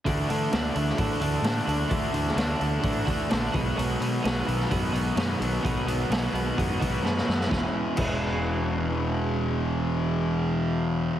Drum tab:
CC |----------------|----------------|----------------|----------------|
HH |o-o-o-o-o-o-o-o-|o-o-o-o-o-o-o-o-|o-o-o-o-o-o-o-o-|o-o-o-o-o-o-----|
SD |----o--o----o---|---oo-------o---|----o--o----o---|----o-------oooo|
BD |o-------o-------|o-------o-o---o-|--------o-------|o-------o-o-----|

CC |----x-----------|----------------|
HH |----------------|----------------|
SD |o---------------|----------------|
BD |o---o-----------|----------------|